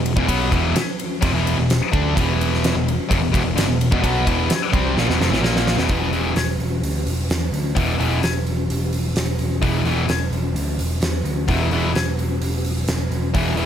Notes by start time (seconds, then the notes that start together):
Already playing: E1 E2 B2
0.06 ride
0.16 E1 E2 B2, kick
0.28 B1 B2 F#3 B3, kick, ride
0.51 E1 E2 B2 E3, kick, ride
0.75 muted distorted electric guitar stroke, muted picked electric bass stroke, snare, ride
0.99 ride
1.21 F1 F2 C3, kick, ride
1.32 E1 E2 B2 E3
1.47 ride
1.58 E1 E2 B2
1.70 snare, ride
1.92 D2 D3 A3 D4, kick, ride
2.15 E1 E2 B2 E3, kick, ride
2.41 ride
2.54 snare
2.64 snare, ride
2.74 E1 E2 B2
2.88 ride
3.09 F1 F2 C3, kick, ride
3.21 E1 E2 B2
3.31 E1 E2 B2, kick, ride
3.44 E1 E2 B2
3.55 G1 G2 D3, snare, ride
3.67 E1 E2 B2
3.81 ride
3.91 E1 E2 B2, kick
4.02 B1 B2 F#3 B3, kick, ride
4.26 E1 E2 B2 E3, kick, ride
4.49 muted distorted electric guitar stroke, muted picked electric bass stroke, snare, ride
4.73 C2 C3 G3 C4, kick, ride
4.96 A#1 A#2 F3, snare
5.08 E1 E2 B2, snare
5.19 F1 F2 C3, snare
5.30 A1 A2 E3, snare
5.42 A#1 A#2 F3 A#3, snare
5.56 snare
5.67 snare
5.75 E1 E2 B2, snare
5.88 E1 E2 B2 E3, kick, open hi-hat
6.11 E2 B2 E3, open hi-hat
6.36 E1, snare, open hi-hat
6.59 E1, open hi-hat
6.82 D2, open hi-hat
7.07 E1, open hi-hat
7.30 E2, snare, open hi-hat
7.52 D2, open hi-hat
7.75 E1 E2 B2 E3, kick, open hi-hat
7.98 E1 E2 B2 E3, open hi-hat
8.23 E1, snare, open hi-hat
8.47 open hi-hat
8.70 E1, open hi-hat
8.93 open hi-hat
9.16 E1, snare, open hi-hat
9.39 E1, open hi-hat
9.62 E1 E2 B2 E3, kick, open hi-hat
9.85 E2 B2 E3, open hi-hat
10.08 E1, snare, open hi-hat
10.31 E1, open hi-hat
10.54 D2, open hi-hat
10.78 E1, open hi-hat
11.01 E2, snare, open hi-hat
11.24 D2, open hi-hat
11.48 E1 E2 B2 E3, kick, open hi-hat
11.71 E1 E2 B2 E3, open hi-hat
11.94 E1, snare, open hi-hat
12.19 open hi-hat
12.40 E1, open hi-hat
12.65 open hi-hat
12.88 E1, snare, open hi-hat
13.11 E1, open hi-hat
13.34 E1 E2 B2 E3, kick, open hi-hat
13.57 E2 B2 E3, open hi-hat